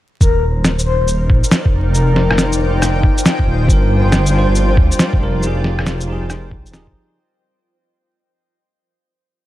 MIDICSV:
0, 0, Header, 1, 7, 480
1, 0, Start_track
1, 0, Tempo, 434783
1, 235, Time_signature, 4, 2, 24, 8
1, 10445, End_track
2, 0, Start_track
2, 0, Title_t, "Ambient pad"
2, 0, Program_c, 0, 92
2, 233, Note_on_c, 0, 63, 93
2, 367, Note_on_c, 0, 70, 95
2, 752, Note_on_c, 0, 74, 86
2, 827, Note_on_c, 0, 79, 73
2, 1121, Note_on_c, 0, 77, 63
2, 2151, Note_off_c, 0, 74, 0
2, 2163, Note_on_c, 0, 65, 86
2, 2370, Note_on_c, 0, 80, 77
2, 2464, Note_on_c, 0, 75, 78
2, 2495, Note_on_c, 0, 72, 77
2, 2936, Note_off_c, 0, 77, 0
2, 2937, Note_off_c, 0, 63, 0
2, 2939, Note_off_c, 0, 70, 0
2, 4078, Note_off_c, 0, 80, 0
2, 4078, Note_on_c, 0, 55, 78
2, 4080, Note_off_c, 0, 75, 0
2, 4246, Note_on_c, 0, 74, 91
2, 4303, Note_on_c, 0, 70, 73
2, 4866, Note_off_c, 0, 72, 0
2, 5992, Note_off_c, 0, 74, 0
2, 5996, Note_off_c, 0, 55, 0
2, 6077, Note_on_c, 0, 72, 86
2, 6586, Note_on_c, 0, 75, 84
2, 6675, Note_off_c, 0, 70, 0
2, 7914, Note_off_c, 0, 75, 0
2, 7915, Note_off_c, 0, 72, 0
2, 7917, Note_off_c, 0, 79, 0
2, 7919, Note_off_c, 0, 65, 0
2, 10445, End_track
3, 0, Start_track
3, 0, Title_t, "Synth texture"
3, 0, Program_c, 1, 99
3, 221, Note_on_c, 1, 72, 78
3, 7921, Note_off_c, 1, 72, 0
3, 10445, End_track
4, 0, Start_track
4, 0, Title_t, "Soft synth lead"
4, 0, Program_c, 2, 80
4, 233, Note_on_c, 2, 70, 90
4, 490, Note_off_c, 2, 70, 0
4, 944, Note_on_c, 2, 72, 87
4, 1205, Note_off_c, 2, 72, 0
4, 2155, Note_on_c, 2, 70, 94
4, 2635, Note_off_c, 2, 70, 0
4, 10445, End_track
5, 0, Start_track
5, 0, Title_t, "Tine electric piano"
5, 0, Program_c, 3, 4
5, 4027, Note_on_c, 3, 55, 82
5, 4054, Note_on_c, 3, 62, 74
5, 4085, Note_on_c, 3, 65, 72
5, 4116, Note_on_c, 3, 70, 94
5, 4291, Control_c, 3, 64, 127
5, 4738, Note_off_c, 3, 55, 0
5, 4751, Note_on_c, 3, 55, 94
5, 4764, Note_off_c, 3, 62, 0
5, 4780, Note_off_c, 3, 65, 0
5, 4780, Note_on_c, 3, 62, 81
5, 4795, Note_off_c, 3, 70, 0
5, 4808, Note_on_c, 3, 65, 87
5, 4841, Note_on_c, 3, 72, 99
5, 5713, Note_off_c, 3, 55, 0
5, 5727, Note_off_c, 3, 62, 0
5, 5732, Note_on_c, 3, 55, 85
5, 5741, Note_off_c, 3, 65, 0
5, 5747, Note_on_c, 3, 62, 74
5, 5758, Note_off_c, 3, 72, 0
5, 5765, Note_on_c, 3, 65, 78
5, 5777, Note_on_c, 3, 70, 92
5, 5948, Note_on_c, 3, 53, 80
5, 5963, Note_off_c, 3, 55, 0
5, 5971, Note_off_c, 3, 62, 0
5, 5977, Note_on_c, 3, 63, 76
5, 5980, Note_off_c, 3, 65, 0
5, 5986, Note_off_c, 3, 70, 0
5, 6004, Note_on_c, 3, 67, 75
5, 6011, Control_c, 3, 64, 0
5, 6038, Note_on_c, 3, 68, 92
5, 6206, Control_c, 3, 64, 127
5, 6658, Note_off_c, 3, 53, 0
5, 6671, Note_on_c, 3, 53, 90
5, 6686, Note_off_c, 3, 63, 0
5, 6699, Note_off_c, 3, 67, 0
5, 6707, Note_on_c, 3, 63, 82
5, 6717, Note_off_c, 3, 68, 0
5, 6734, Note_on_c, 3, 67, 83
5, 6760, Note_on_c, 3, 68, 102
5, 7396, Note_off_c, 3, 53, 0
5, 7408, Note_on_c, 3, 53, 88
5, 7410, Note_off_c, 3, 63, 0
5, 7423, Note_on_c, 3, 63, 83
5, 7428, Note_off_c, 3, 67, 0
5, 7440, Note_on_c, 3, 67, 81
5, 7441, Note_off_c, 3, 68, 0
5, 7455, Note_on_c, 3, 68, 97
5, 7882, Note_off_c, 3, 53, 0
5, 7889, Note_off_c, 3, 63, 0
5, 7898, Note_off_c, 3, 67, 0
5, 7905, Note_off_c, 3, 68, 0
5, 7929, Control_c, 3, 64, 0
5, 10445, End_track
6, 0, Start_track
6, 0, Title_t, "Detuned saw bass"
6, 0, Program_c, 4, 39
6, 228, Note_on_c, 4, 27, 98
6, 608, Note_off_c, 4, 27, 0
6, 624, Note_on_c, 4, 27, 92
6, 1088, Note_off_c, 4, 27, 0
6, 1108, Note_on_c, 4, 27, 89
6, 1423, Note_off_c, 4, 27, 0
6, 1431, Note_on_c, 4, 34, 73
6, 1577, Note_off_c, 4, 34, 0
6, 1911, Note_on_c, 4, 29, 86
6, 2529, Note_off_c, 4, 29, 0
6, 2550, Note_on_c, 4, 29, 85
6, 3010, Note_off_c, 4, 29, 0
6, 3024, Note_on_c, 4, 29, 87
6, 3341, Note_off_c, 4, 29, 0
6, 3825, Note_on_c, 4, 27, 84
6, 4057, Note_off_c, 4, 27, 0
6, 4066, Note_on_c, 4, 31, 93
6, 4447, Note_off_c, 4, 31, 0
6, 4468, Note_on_c, 4, 31, 89
6, 4929, Note_off_c, 4, 31, 0
6, 4948, Note_on_c, 4, 31, 90
6, 5260, Note_off_c, 4, 31, 0
6, 5267, Note_on_c, 4, 38, 82
6, 5415, Note_off_c, 4, 38, 0
6, 5753, Note_on_c, 4, 29, 85
6, 6371, Note_off_c, 4, 29, 0
6, 6385, Note_on_c, 4, 29, 89
6, 6848, Note_off_c, 4, 29, 0
6, 6865, Note_on_c, 4, 29, 95
6, 7187, Note_on_c, 4, 36, 80
6, 7203, Note_off_c, 4, 29, 0
6, 7346, Note_on_c, 4, 27, 89
6, 7362, Note_off_c, 4, 36, 0
6, 7563, Note_off_c, 4, 27, 0
6, 7585, Note_on_c, 4, 36, 101
6, 7665, Note_off_c, 4, 36, 0
6, 10445, End_track
7, 0, Start_track
7, 0, Title_t, "Drums"
7, 231, Note_on_c, 9, 36, 116
7, 234, Note_on_c, 9, 82, 57
7, 341, Note_off_c, 9, 36, 0
7, 344, Note_off_c, 9, 82, 0
7, 712, Note_on_c, 9, 38, 96
7, 712, Note_on_c, 9, 82, 55
7, 823, Note_off_c, 9, 38, 0
7, 823, Note_off_c, 9, 82, 0
7, 871, Note_on_c, 9, 82, 58
7, 981, Note_off_c, 9, 82, 0
7, 1189, Note_on_c, 9, 82, 53
7, 1300, Note_off_c, 9, 82, 0
7, 1431, Note_on_c, 9, 36, 104
7, 1541, Note_off_c, 9, 36, 0
7, 1586, Note_on_c, 9, 82, 58
7, 1672, Note_off_c, 9, 82, 0
7, 1672, Note_on_c, 9, 38, 103
7, 1672, Note_on_c, 9, 82, 54
7, 1782, Note_off_c, 9, 38, 0
7, 1782, Note_off_c, 9, 82, 0
7, 1827, Note_on_c, 9, 36, 98
7, 1937, Note_off_c, 9, 36, 0
7, 2149, Note_on_c, 9, 82, 56
7, 2259, Note_off_c, 9, 82, 0
7, 2387, Note_on_c, 9, 38, 54
7, 2497, Note_off_c, 9, 38, 0
7, 2546, Note_on_c, 9, 37, 57
7, 2629, Note_on_c, 9, 38, 93
7, 2629, Note_on_c, 9, 82, 55
7, 2656, Note_off_c, 9, 37, 0
7, 2739, Note_off_c, 9, 38, 0
7, 2739, Note_off_c, 9, 82, 0
7, 2788, Note_on_c, 9, 82, 58
7, 2899, Note_off_c, 9, 82, 0
7, 3114, Note_on_c, 9, 37, 55
7, 3114, Note_on_c, 9, 82, 54
7, 3225, Note_off_c, 9, 37, 0
7, 3225, Note_off_c, 9, 82, 0
7, 3349, Note_on_c, 9, 36, 107
7, 3460, Note_off_c, 9, 36, 0
7, 3508, Note_on_c, 9, 82, 57
7, 3595, Note_off_c, 9, 82, 0
7, 3595, Note_on_c, 9, 38, 101
7, 3595, Note_on_c, 9, 82, 54
7, 3705, Note_off_c, 9, 38, 0
7, 3705, Note_off_c, 9, 82, 0
7, 3745, Note_on_c, 9, 36, 60
7, 3855, Note_off_c, 9, 36, 0
7, 4068, Note_on_c, 9, 36, 117
7, 4079, Note_on_c, 9, 82, 53
7, 4178, Note_off_c, 9, 36, 0
7, 4190, Note_off_c, 9, 82, 0
7, 4552, Note_on_c, 9, 38, 104
7, 4552, Note_on_c, 9, 82, 53
7, 4663, Note_off_c, 9, 38, 0
7, 4663, Note_off_c, 9, 82, 0
7, 4706, Note_on_c, 9, 82, 55
7, 4816, Note_off_c, 9, 82, 0
7, 5026, Note_on_c, 9, 82, 55
7, 5136, Note_off_c, 9, 82, 0
7, 5269, Note_on_c, 9, 36, 108
7, 5379, Note_off_c, 9, 36, 0
7, 5426, Note_on_c, 9, 82, 57
7, 5512, Note_off_c, 9, 82, 0
7, 5512, Note_on_c, 9, 38, 104
7, 5512, Note_on_c, 9, 82, 57
7, 5623, Note_off_c, 9, 38, 0
7, 5623, Note_off_c, 9, 82, 0
7, 5666, Note_on_c, 9, 36, 110
7, 5776, Note_off_c, 9, 36, 0
7, 5992, Note_on_c, 9, 82, 52
7, 6102, Note_off_c, 9, 82, 0
7, 6231, Note_on_c, 9, 38, 59
7, 6342, Note_off_c, 9, 38, 0
7, 6389, Note_on_c, 9, 37, 54
7, 6476, Note_on_c, 9, 38, 103
7, 6476, Note_on_c, 9, 82, 52
7, 6500, Note_off_c, 9, 37, 0
7, 6586, Note_off_c, 9, 38, 0
7, 6586, Note_off_c, 9, 82, 0
7, 6631, Note_on_c, 9, 82, 55
7, 6742, Note_off_c, 9, 82, 0
7, 6953, Note_on_c, 9, 37, 57
7, 6953, Note_on_c, 9, 82, 53
7, 7063, Note_off_c, 9, 37, 0
7, 7063, Note_off_c, 9, 82, 0
7, 7191, Note_on_c, 9, 36, 111
7, 7301, Note_off_c, 9, 36, 0
7, 7353, Note_on_c, 9, 82, 54
7, 7435, Note_off_c, 9, 82, 0
7, 7435, Note_on_c, 9, 38, 103
7, 7435, Note_on_c, 9, 82, 57
7, 7545, Note_off_c, 9, 38, 0
7, 7545, Note_off_c, 9, 82, 0
7, 7587, Note_on_c, 9, 36, 61
7, 7697, Note_off_c, 9, 36, 0
7, 10445, End_track
0, 0, End_of_file